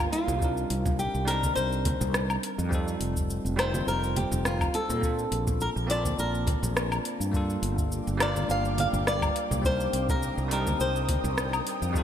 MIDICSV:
0, 0, Header, 1, 6, 480
1, 0, Start_track
1, 0, Tempo, 576923
1, 344, Time_signature, 4, 2, 24, 8
1, 10011, End_track
2, 0, Start_track
2, 0, Title_t, "Ambient pad"
2, 0, Program_c, 0, 92
2, 6106, Note_on_c, 0, 79, 76
2, 6107, Note_on_c, 0, 58, 82
2, 6107, Note_on_c, 0, 86, 85
2, 6109, Note_on_c, 0, 77, 80
2, 8006, Note_off_c, 0, 58, 0
2, 8006, Note_off_c, 0, 79, 0
2, 8006, Note_off_c, 0, 86, 0
2, 8007, Note_off_c, 0, 77, 0
2, 8028, Note_on_c, 0, 72, 80
2, 8029, Note_on_c, 0, 82, 75
2, 8030, Note_on_c, 0, 79, 74
2, 8030, Note_on_c, 0, 87, 93
2, 9927, Note_off_c, 0, 72, 0
2, 9927, Note_off_c, 0, 82, 0
2, 9928, Note_off_c, 0, 87, 0
2, 10011, Note_off_c, 0, 79, 0
2, 10011, End_track
3, 0, Start_track
3, 0, Title_t, "Nylon-string guitar"
3, 0, Program_c, 1, 24
3, 0, Note_on_c, 1, 65, 85
3, 93, Note_off_c, 1, 65, 0
3, 103, Note_on_c, 1, 65, 84
3, 820, Note_off_c, 1, 65, 0
3, 824, Note_on_c, 1, 67, 93
3, 1060, Note_on_c, 1, 70, 95
3, 1071, Note_off_c, 1, 67, 0
3, 1285, Note_off_c, 1, 70, 0
3, 1294, Note_on_c, 1, 72, 99
3, 1985, Note_off_c, 1, 72, 0
3, 2984, Note_on_c, 1, 72, 92
3, 3207, Note_off_c, 1, 72, 0
3, 3227, Note_on_c, 1, 70, 99
3, 3465, Note_on_c, 1, 67, 86
3, 3473, Note_off_c, 1, 70, 0
3, 3711, Note_off_c, 1, 67, 0
3, 3714, Note_on_c, 1, 65, 89
3, 3950, Note_on_c, 1, 69, 87
3, 3956, Note_off_c, 1, 65, 0
3, 4670, Note_off_c, 1, 69, 0
3, 4673, Note_on_c, 1, 70, 95
3, 4736, Note_off_c, 1, 70, 0
3, 4915, Note_on_c, 1, 74, 104
3, 5151, Note_off_c, 1, 74, 0
3, 5154, Note_on_c, 1, 70, 96
3, 5836, Note_off_c, 1, 70, 0
3, 6842, Note_on_c, 1, 74, 98
3, 7076, Note_off_c, 1, 74, 0
3, 7079, Note_on_c, 1, 77, 111
3, 7311, Note_off_c, 1, 77, 0
3, 7321, Note_on_c, 1, 77, 100
3, 7384, Note_off_c, 1, 77, 0
3, 7554, Note_on_c, 1, 74, 101
3, 7996, Note_off_c, 1, 74, 0
3, 8035, Note_on_c, 1, 72, 106
3, 8403, Note_off_c, 1, 72, 0
3, 8406, Note_on_c, 1, 70, 88
3, 8726, Note_off_c, 1, 70, 0
3, 8756, Note_on_c, 1, 70, 90
3, 8974, Note_off_c, 1, 70, 0
3, 8991, Note_on_c, 1, 72, 95
3, 9674, Note_off_c, 1, 72, 0
3, 10011, End_track
4, 0, Start_track
4, 0, Title_t, "Tine electric piano"
4, 0, Program_c, 2, 4
4, 0, Control_c, 2, 64, 127
4, 0, Note_on_c, 2, 55, 99
4, 0, Note_on_c, 2, 58, 92
4, 0, Note_on_c, 2, 62, 88
4, 0, Note_on_c, 2, 65, 91
4, 0, Note_on_c, 2, 69, 96
4, 0, Note_on_c, 2, 70, 107
4, 308, Note_off_c, 2, 55, 0
4, 313, Note_off_c, 2, 58, 0
4, 319, Note_off_c, 2, 62, 0
4, 324, Note_off_c, 2, 65, 0
4, 325, Note_on_c, 2, 55, 83
4, 330, Note_off_c, 2, 70, 0
4, 336, Note_on_c, 2, 60, 75
4, 347, Note_on_c, 2, 62, 74
4, 355, Control_c, 2, 64, 0
4, 357, Note_on_c, 2, 63, 77
4, 360, Note_off_c, 2, 69, 0
4, 370, Note_on_c, 2, 70, 88
4, 493, Control_c, 2, 64, 127
4, 1028, Note_off_c, 2, 55, 0
4, 1033, Note_off_c, 2, 60, 0
4, 1039, Note_off_c, 2, 62, 0
4, 1042, Note_on_c, 2, 55, 93
4, 1044, Note_off_c, 2, 63, 0
4, 1050, Note_off_c, 2, 70, 0
4, 1053, Note_on_c, 2, 60, 80
4, 1064, Note_on_c, 2, 62, 81
4, 1076, Note_on_c, 2, 63, 86
4, 1086, Note_on_c, 2, 70, 101
4, 2226, Note_off_c, 2, 55, 0
4, 2232, Note_off_c, 2, 60, 0
4, 2237, Note_off_c, 2, 62, 0
4, 2238, Note_on_c, 2, 55, 95
4, 2243, Note_off_c, 2, 63, 0
4, 2248, Note_off_c, 2, 70, 0
4, 2251, Note_on_c, 2, 60, 86
4, 2262, Note_on_c, 2, 63, 87
4, 2273, Control_c, 2, 64, 0
4, 2273, Note_on_c, 2, 65, 81
4, 2284, Note_on_c, 2, 69, 100
4, 2438, Control_c, 2, 64, 127
4, 2944, Note_off_c, 2, 55, 0
4, 2951, Note_off_c, 2, 60, 0
4, 2956, Note_off_c, 2, 63, 0
4, 2960, Note_on_c, 2, 55, 99
4, 2962, Note_off_c, 2, 65, 0
4, 2967, Note_off_c, 2, 69, 0
4, 2972, Note_on_c, 2, 60, 92
4, 2983, Note_on_c, 2, 63, 89
4, 2993, Note_on_c, 2, 65, 91
4, 3004, Note_on_c, 2, 72, 111
4, 4145, Note_off_c, 2, 55, 0
4, 4151, Note_off_c, 2, 60, 0
4, 4157, Note_off_c, 2, 63, 0
4, 4161, Note_on_c, 2, 58, 80
4, 4162, Note_off_c, 2, 65, 0
4, 4167, Note_off_c, 2, 72, 0
4, 4171, Note_on_c, 2, 60, 74
4, 4183, Note_on_c, 2, 62, 74
4, 4193, Note_on_c, 2, 65, 75
4, 4195, Control_c, 2, 64, 0
4, 4204, Note_on_c, 2, 69, 91
4, 4342, Control_c, 2, 64, 127
4, 4866, Note_off_c, 2, 58, 0
4, 4871, Note_off_c, 2, 60, 0
4, 4877, Note_off_c, 2, 62, 0
4, 4882, Note_off_c, 2, 65, 0
4, 4883, Note_on_c, 2, 58, 96
4, 4887, Note_off_c, 2, 69, 0
4, 4892, Note_on_c, 2, 60, 81
4, 4903, Note_on_c, 2, 62, 84
4, 4915, Note_on_c, 2, 65, 87
4, 4926, Note_on_c, 2, 81, 104
4, 6067, Note_off_c, 2, 58, 0
4, 6071, Note_off_c, 2, 60, 0
4, 6077, Note_off_c, 2, 62, 0
4, 6083, Note_off_c, 2, 65, 0
4, 6086, Note_on_c, 2, 55, 90
4, 6088, Note_off_c, 2, 81, 0
4, 6097, Note_on_c, 2, 58, 82
4, 6107, Note_on_c, 2, 62, 77
4, 6114, Control_c, 2, 64, 0
4, 6116, Note_on_c, 2, 65, 82
4, 6128, Note_on_c, 2, 69, 101
4, 6262, Control_c, 2, 64, 127
4, 6788, Note_off_c, 2, 55, 0
4, 6794, Note_off_c, 2, 58, 0
4, 6799, Note_off_c, 2, 62, 0
4, 6802, Note_on_c, 2, 55, 105
4, 6803, Note_off_c, 2, 65, 0
4, 6809, Note_off_c, 2, 69, 0
4, 6813, Note_on_c, 2, 58, 91
4, 6823, Note_on_c, 2, 62, 89
4, 6834, Note_on_c, 2, 65, 93
4, 6845, Note_on_c, 2, 70, 110
4, 7986, Note_off_c, 2, 55, 0
4, 7992, Note_off_c, 2, 58, 0
4, 7997, Note_off_c, 2, 62, 0
4, 8001, Note_on_c, 2, 55, 85
4, 8002, Note_off_c, 2, 65, 0
4, 8008, Note_off_c, 2, 70, 0
4, 8013, Note_on_c, 2, 60, 82
4, 8023, Note_on_c, 2, 62, 82
4, 8033, Control_c, 2, 64, 0
4, 8036, Note_on_c, 2, 63, 76
4, 8045, Note_on_c, 2, 70, 89
4, 8200, Control_c, 2, 64, 127
4, 8706, Note_off_c, 2, 55, 0
4, 8712, Note_off_c, 2, 60, 0
4, 8717, Note_off_c, 2, 62, 0
4, 8720, Note_on_c, 2, 55, 96
4, 8723, Note_off_c, 2, 63, 0
4, 8728, Note_off_c, 2, 70, 0
4, 8731, Note_on_c, 2, 60, 86
4, 8743, Note_on_c, 2, 62, 87
4, 8755, Note_on_c, 2, 63, 92
4, 8763, Note_on_c, 2, 70, 108
4, 9905, Note_off_c, 2, 55, 0
4, 9911, Note_off_c, 2, 60, 0
4, 9917, Note_off_c, 2, 62, 0
4, 9922, Note_on_c, 2, 55, 99
4, 9923, Note_off_c, 2, 63, 0
4, 9927, Note_off_c, 2, 70, 0
4, 9933, Note_on_c, 2, 60, 89
4, 9944, Note_on_c, 2, 63, 83
4, 9953, Control_c, 2, 64, 0
4, 9957, Note_on_c, 2, 65, 90
4, 9967, Note_on_c, 2, 69, 102
4, 10011, Note_off_c, 2, 55, 0
4, 10011, Note_off_c, 2, 60, 0
4, 10011, Note_off_c, 2, 63, 0
4, 10011, Note_off_c, 2, 65, 0
4, 10011, Note_off_c, 2, 69, 0
4, 10011, End_track
5, 0, Start_track
5, 0, Title_t, "Fretless electric bass"
5, 0, Program_c, 3, 35
5, 228, Note_on_c, 3, 36, 92
5, 524, Note_off_c, 3, 36, 0
5, 582, Note_on_c, 3, 36, 92
5, 885, Note_off_c, 3, 36, 0
5, 950, Note_on_c, 3, 36, 94
5, 1245, Note_off_c, 3, 36, 0
5, 1303, Note_on_c, 3, 36, 78
5, 1605, Note_off_c, 3, 36, 0
5, 1670, Note_on_c, 3, 36, 114
5, 1965, Note_off_c, 3, 36, 0
5, 2149, Note_on_c, 3, 41, 97
5, 2444, Note_off_c, 3, 41, 0
5, 2497, Note_on_c, 3, 29, 89
5, 2803, Note_off_c, 3, 29, 0
5, 2867, Note_on_c, 3, 29, 100
5, 3163, Note_off_c, 3, 29, 0
5, 3218, Note_on_c, 3, 29, 78
5, 3523, Note_off_c, 3, 29, 0
5, 3589, Note_on_c, 3, 29, 108
5, 3884, Note_off_c, 3, 29, 0
5, 4070, Note_on_c, 3, 46, 100
5, 4365, Note_off_c, 3, 46, 0
5, 4420, Note_on_c, 3, 34, 89
5, 4724, Note_off_c, 3, 34, 0
5, 4791, Note_on_c, 3, 34, 93
5, 5086, Note_off_c, 3, 34, 0
5, 5144, Note_on_c, 3, 34, 78
5, 5446, Note_off_c, 3, 34, 0
5, 5511, Note_on_c, 3, 34, 108
5, 5805, Note_off_c, 3, 34, 0
5, 5989, Note_on_c, 3, 43, 88
5, 6284, Note_off_c, 3, 43, 0
5, 6341, Note_on_c, 3, 31, 93
5, 6644, Note_off_c, 3, 31, 0
5, 6714, Note_on_c, 3, 31, 101
5, 7007, Note_off_c, 3, 31, 0
5, 7063, Note_on_c, 3, 31, 82
5, 7365, Note_off_c, 3, 31, 0
5, 7429, Note_on_c, 3, 31, 109
5, 7724, Note_off_c, 3, 31, 0
5, 7910, Note_on_c, 3, 36, 99
5, 8205, Note_off_c, 3, 36, 0
5, 8261, Note_on_c, 3, 36, 90
5, 8565, Note_off_c, 3, 36, 0
5, 8630, Note_on_c, 3, 36, 102
5, 8925, Note_off_c, 3, 36, 0
5, 8979, Note_on_c, 3, 36, 80
5, 9283, Note_off_c, 3, 36, 0
5, 9349, Note_on_c, 3, 36, 116
5, 9644, Note_off_c, 3, 36, 0
5, 9831, Note_on_c, 3, 41, 100
5, 10011, Note_off_c, 3, 41, 0
5, 10011, End_track
6, 0, Start_track
6, 0, Title_t, "Drums"
6, 0, Note_on_c, 9, 82, 33
6, 80, Note_off_c, 9, 82, 0
6, 107, Note_on_c, 9, 46, 85
6, 190, Note_off_c, 9, 46, 0
6, 234, Note_on_c, 9, 64, 85
6, 237, Note_on_c, 9, 82, 68
6, 317, Note_off_c, 9, 64, 0
6, 321, Note_off_c, 9, 82, 0
6, 342, Note_on_c, 9, 36, 118
6, 349, Note_on_c, 9, 82, 56
6, 426, Note_off_c, 9, 36, 0
6, 432, Note_off_c, 9, 82, 0
6, 477, Note_on_c, 9, 82, 36
6, 560, Note_off_c, 9, 82, 0
6, 585, Note_on_c, 9, 46, 87
6, 668, Note_off_c, 9, 46, 0
6, 711, Note_on_c, 9, 36, 106
6, 711, Note_on_c, 9, 64, 88
6, 716, Note_on_c, 9, 82, 63
6, 794, Note_off_c, 9, 36, 0
6, 794, Note_off_c, 9, 64, 0
6, 799, Note_off_c, 9, 82, 0
6, 826, Note_on_c, 9, 82, 51
6, 909, Note_off_c, 9, 82, 0
6, 954, Note_on_c, 9, 82, 34
6, 1037, Note_off_c, 9, 82, 0
6, 1063, Note_on_c, 9, 46, 94
6, 1146, Note_off_c, 9, 46, 0
6, 1191, Note_on_c, 9, 36, 63
6, 1192, Note_on_c, 9, 63, 77
6, 1193, Note_on_c, 9, 82, 69
6, 1274, Note_off_c, 9, 36, 0
6, 1275, Note_off_c, 9, 63, 0
6, 1276, Note_off_c, 9, 82, 0
6, 1306, Note_on_c, 9, 82, 61
6, 1389, Note_off_c, 9, 82, 0
6, 1434, Note_on_c, 9, 82, 33
6, 1517, Note_off_c, 9, 82, 0
6, 1542, Note_on_c, 9, 36, 102
6, 1542, Note_on_c, 9, 46, 94
6, 1544, Note_on_c, 9, 63, 87
6, 1625, Note_off_c, 9, 36, 0
6, 1625, Note_off_c, 9, 46, 0
6, 1627, Note_off_c, 9, 63, 0
6, 1674, Note_on_c, 9, 64, 87
6, 1674, Note_on_c, 9, 82, 72
6, 1757, Note_off_c, 9, 64, 0
6, 1757, Note_off_c, 9, 82, 0
6, 1782, Note_on_c, 9, 37, 81
6, 1784, Note_on_c, 9, 82, 59
6, 1866, Note_off_c, 9, 37, 0
6, 1867, Note_off_c, 9, 82, 0
6, 1913, Note_on_c, 9, 77, 72
6, 1915, Note_on_c, 9, 82, 31
6, 1997, Note_off_c, 9, 77, 0
6, 1998, Note_off_c, 9, 82, 0
6, 2025, Note_on_c, 9, 46, 87
6, 2108, Note_off_c, 9, 46, 0
6, 2155, Note_on_c, 9, 82, 67
6, 2238, Note_off_c, 9, 82, 0
6, 2261, Note_on_c, 9, 36, 120
6, 2267, Note_on_c, 9, 82, 56
6, 2345, Note_off_c, 9, 36, 0
6, 2350, Note_off_c, 9, 82, 0
6, 2395, Note_on_c, 9, 82, 35
6, 2478, Note_off_c, 9, 82, 0
6, 2501, Note_on_c, 9, 46, 83
6, 2584, Note_off_c, 9, 46, 0
6, 2631, Note_on_c, 9, 36, 100
6, 2634, Note_on_c, 9, 82, 64
6, 2714, Note_off_c, 9, 36, 0
6, 2717, Note_off_c, 9, 82, 0
6, 2746, Note_on_c, 9, 82, 56
6, 2830, Note_off_c, 9, 82, 0
6, 2877, Note_on_c, 9, 82, 37
6, 2960, Note_off_c, 9, 82, 0
6, 2987, Note_on_c, 9, 37, 79
6, 2987, Note_on_c, 9, 46, 90
6, 2987, Note_on_c, 9, 77, 61
6, 3070, Note_off_c, 9, 37, 0
6, 3070, Note_off_c, 9, 46, 0
6, 3070, Note_off_c, 9, 77, 0
6, 3112, Note_on_c, 9, 63, 91
6, 3117, Note_on_c, 9, 82, 71
6, 3196, Note_off_c, 9, 63, 0
6, 3200, Note_off_c, 9, 82, 0
6, 3228, Note_on_c, 9, 82, 57
6, 3311, Note_off_c, 9, 82, 0
6, 3357, Note_on_c, 9, 82, 36
6, 3440, Note_off_c, 9, 82, 0
6, 3461, Note_on_c, 9, 64, 74
6, 3465, Note_on_c, 9, 46, 90
6, 3465, Note_on_c, 9, 63, 85
6, 3544, Note_off_c, 9, 64, 0
6, 3548, Note_off_c, 9, 46, 0
6, 3548, Note_off_c, 9, 63, 0
6, 3589, Note_on_c, 9, 64, 85
6, 3596, Note_on_c, 9, 82, 74
6, 3672, Note_off_c, 9, 64, 0
6, 3679, Note_off_c, 9, 82, 0
6, 3705, Note_on_c, 9, 37, 76
6, 3706, Note_on_c, 9, 82, 60
6, 3788, Note_off_c, 9, 37, 0
6, 3789, Note_off_c, 9, 82, 0
6, 3831, Note_on_c, 9, 36, 117
6, 3836, Note_on_c, 9, 77, 74
6, 3837, Note_on_c, 9, 82, 32
6, 3914, Note_off_c, 9, 36, 0
6, 3919, Note_off_c, 9, 77, 0
6, 3920, Note_off_c, 9, 82, 0
6, 3944, Note_on_c, 9, 46, 87
6, 4027, Note_off_c, 9, 46, 0
6, 4076, Note_on_c, 9, 82, 75
6, 4078, Note_on_c, 9, 64, 90
6, 4159, Note_off_c, 9, 82, 0
6, 4161, Note_off_c, 9, 64, 0
6, 4182, Note_on_c, 9, 36, 125
6, 4187, Note_on_c, 9, 82, 58
6, 4265, Note_off_c, 9, 36, 0
6, 4270, Note_off_c, 9, 82, 0
6, 4315, Note_on_c, 9, 82, 34
6, 4398, Note_off_c, 9, 82, 0
6, 4425, Note_on_c, 9, 46, 86
6, 4508, Note_off_c, 9, 46, 0
6, 4551, Note_on_c, 9, 36, 98
6, 4553, Note_on_c, 9, 64, 75
6, 4553, Note_on_c, 9, 82, 65
6, 4635, Note_off_c, 9, 36, 0
6, 4636, Note_off_c, 9, 64, 0
6, 4636, Note_off_c, 9, 82, 0
6, 4665, Note_on_c, 9, 82, 54
6, 4748, Note_off_c, 9, 82, 0
6, 4798, Note_on_c, 9, 82, 36
6, 4882, Note_off_c, 9, 82, 0
6, 4908, Note_on_c, 9, 46, 87
6, 4991, Note_off_c, 9, 46, 0
6, 5032, Note_on_c, 9, 36, 64
6, 5038, Note_on_c, 9, 82, 64
6, 5040, Note_on_c, 9, 63, 85
6, 5115, Note_off_c, 9, 36, 0
6, 5121, Note_off_c, 9, 82, 0
6, 5123, Note_off_c, 9, 63, 0
6, 5149, Note_on_c, 9, 82, 59
6, 5232, Note_off_c, 9, 82, 0
6, 5280, Note_on_c, 9, 82, 34
6, 5363, Note_off_c, 9, 82, 0
6, 5381, Note_on_c, 9, 63, 92
6, 5383, Note_on_c, 9, 36, 110
6, 5387, Note_on_c, 9, 46, 85
6, 5464, Note_off_c, 9, 63, 0
6, 5467, Note_off_c, 9, 36, 0
6, 5470, Note_off_c, 9, 46, 0
6, 5516, Note_on_c, 9, 64, 71
6, 5520, Note_on_c, 9, 82, 72
6, 5599, Note_off_c, 9, 64, 0
6, 5603, Note_off_c, 9, 82, 0
6, 5629, Note_on_c, 9, 37, 80
6, 5631, Note_on_c, 9, 82, 57
6, 5713, Note_off_c, 9, 37, 0
6, 5714, Note_off_c, 9, 82, 0
6, 5756, Note_on_c, 9, 77, 71
6, 5758, Note_on_c, 9, 82, 32
6, 5839, Note_off_c, 9, 77, 0
6, 5841, Note_off_c, 9, 82, 0
6, 5867, Note_on_c, 9, 46, 82
6, 5951, Note_off_c, 9, 46, 0
6, 5999, Note_on_c, 9, 82, 72
6, 6082, Note_off_c, 9, 82, 0
6, 6104, Note_on_c, 9, 36, 114
6, 6110, Note_on_c, 9, 82, 56
6, 6187, Note_off_c, 9, 36, 0
6, 6193, Note_off_c, 9, 82, 0
6, 6238, Note_on_c, 9, 82, 34
6, 6321, Note_off_c, 9, 82, 0
6, 6347, Note_on_c, 9, 46, 85
6, 6430, Note_off_c, 9, 46, 0
6, 6473, Note_on_c, 9, 36, 106
6, 6477, Note_on_c, 9, 82, 64
6, 6556, Note_off_c, 9, 36, 0
6, 6560, Note_off_c, 9, 82, 0
6, 6589, Note_on_c, 9, 82, 54
6, 6672, Note_off_c, 9, 82, 0
6, 6717, Note_on_c, 9, 82, 33
6, 6801, Note_off_c, 9, 82, 0
6, 6825, Note_on_c, 9, 37, 79
6, 6825, Note_on_c, 9, 46, 82
6, 6825, Note_on_c, 9, 77, 63
6, 6909, Note_off_c, 9, 37, 0
6, 6909, Note_off_c, 9, 46, 0
6, 6909, Note_off_c, 9, 77, 0
6, 6953, Note_on_c, 9, 63, 78
6, 6959, Note_on_c, 9, 82, 67
6, 7037, Note_off_c, 9, 63, 0
6, 7042, Note_off_c, 9, 82, 0
6, 7069, Note_on_c, 9, 82, 55
6, 7152, Note_off_c, 9, 82, 0
6, 7197, Note_on_c, 9, 82, 32
6, 7280, Note_off_c, 9, 82, 0
6, 7303, Note_on_c, 9, 63, 87
6, 7306, Note_on_c, 9, 64, 72
6, 7307, Note_on_c, 9, 46, 89
6, 7386, Note_off_c, 9, 63, 0
6, 7390, Note_off_c, 9, 46, 0
6, 7390, Note_off_c, 9, 64, 0
6, 7436, Note_on_c, 9, 82, 66
6, 7437, Note_on_c, 9, 64, 68
6, 7520, Note_off_c, 9, 64, 0
6, 7520, Note_off_c, 9, 82, 0
6, 7548, Note_on_c, 9, 37, 75
6, 7549, Note_on_c, 9, 82, 58
6, 7631, Note_off_c, 9, 37, 0
6, 7633, Note_off_c, 9, 82, 0
6, 7673, Note_on_c, 9, 36, 109
6, 7674, Note_on_c, 9, 77, 73
6, 7676, Note_on_c, 9, 82, 32
6, 7756, Note_off_c, 9, 36, 0
6, 7758, Note_off_c, 9, 77, 0
6, 7759, Note_off_c, 9, 82, 0
6, 7786, Note_on_c, 9, 46, 81
6, 7869, Note_off_c, 9, 46, 0
6, 7914, Note_on_c, 9, 64, 86
6, 7917, Note_on_c, 9, 82, 69
6, 7997, Note_off_c, 9, 64, 0
6, 8000, Note_off_c, 9, 82, 0
6, 8024, Note_on_c, 9, 36, 113
6, 8030, Note_on_c, 9, 82, 54
6, 8107, Note_off_c, 9, 36, 0
6, 8113, Note_off_c, 9, 82, 0
6, 8156, Note_on_c, 9, 82, 34
6, 8240, Note_off_c, 9, 82, 0
6, 8265, Note_on_c, 9, 46, 85
6, 8348, Note_off_c, 9, 46, 0
6, 8392, Note_on_c, 9, 36, 104
6, 8396, Note_on_c, 9, 82, 59
6, 8400, Note_on_c, 9, 64, 82
6, 8475, Note_off_c, 9, 36, 0
6, 8479, Note_off_c, 9, 82, 0
6, 8483, Note_off_c, 9, 64, 0
6, 8509, Note_on_c, 9, 82, 49
6, 8592, Note_off_c, 9, 82, 0
6, 8635, Note_on_c, 9, 82, 33
6, 8718, Note_off_c, 9, 82, 0
6, 8746, Note_on_c, 9, 46, 93
6, 8830, Note_off_c, 9, 46, 0
6, 8872, Note_on_c, 9, 36, 62
6, 8876, Note_on_c, 9, 82, 64
6, 8879, Note_on_c, 9, 63, 80
6, 8955, Note_off_c, 9, 36, 0
6, 8959, Note_off_c, 9, 82, 0
6, 8962, Note_off_c, 9, 63, 0
6, 8987, Note_on_c, 9, 82, 54
6, 9070, Note_off_c, 9, 82, 0
6, 9117, Note_on_c, 9, 82, 32
6, 9200, Note_off_c, 9, 82, 0
6, 9222, Note_on_c, 9, 36, 95
6, 9223, Note_on_c, 9, 46, 88
6, 9230, Note_on_c, 9, 63, 87
6, 9306, Note_off_c, 9, 36, 0
6, 9307, Note_off_c, 9, 46, 0
6, 9314, Note_off_c, 9, 63, 0
6, 9356, Note_on_c, 9, 64, 69
6, 9357, Note_on_c, 9, 82, 67
6, 9439, Note_off_c, 9, 64, 0
6, 9440, Note_off_c, 9, 82, 0
6, 9465, Note_on_c, 9, 37, 74
6, 9467, Note_on_c, 9, 82, 52
6, 9549, Note_off_c, 9, 37, 0
6, 9550, Note_off_c, 9, 82, 0
6, 9596, Note_on_c, 9, 77, 75
6, 9597, Note_on_c, 9, 82, 30
6, 9679, Note_off_c, 9, 77, 0
6, 9681, Note_off_c, 9, 82, 0
6, 9706, Note_on_c, 9, 46, 80
6, 9789, Note_off_c, 9, 46, 0
6, 9838, Note_on_c, 9, 82, 65
6, 9921, Note_off_c, 9, 82, 0
6, 9941, Note_on_c, 9, 36, 110
6, 9948, Note_on_c, 9, 82, 50
6, 10011, Note_off_c, 9, 36, 0
6, 10011, Note_off_c, 9, 82, 0
6, 10011, End_track
0, 0, End_of_file